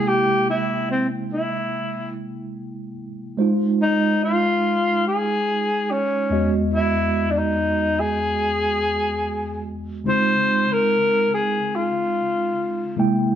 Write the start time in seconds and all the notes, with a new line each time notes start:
Already playing: C3 G#3 A#3 E4 G5
0.08 G4
0.50 E4
0.91 C4
1.33 E4
3.37 G#3 D#4 F4 C5
3.82 D#4
4.24 F4
5.08 G#4
5.91 C#4
6.30 E2 G#3 B3 F#4 D#5
6.74 E4
7.31 D4
7.38 D#4
8.00 G#4
10.04 C#3 G#3 C4 D#4 F4
10.08 C5
10.73 A#4
11.34 G#4
11.75 F4
12.96 C3 G#3 A#3 E4 G5